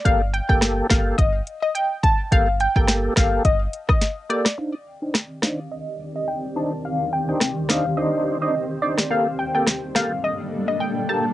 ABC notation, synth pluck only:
X:1
M:4/4
L:1/16
Q:"Swing 16ths" 1/4=106
K:Cdor
V:1 name="Synth pluck"
f z g g z2 f z e z2 e g z a z | f z g g z2 f z e z2 e z2 d z | f z g g z2 f z e z2 e g z a z | f z g g z2 f z e z2 e z2 d z |
f z g g z2 f z e z2 e g z a z |]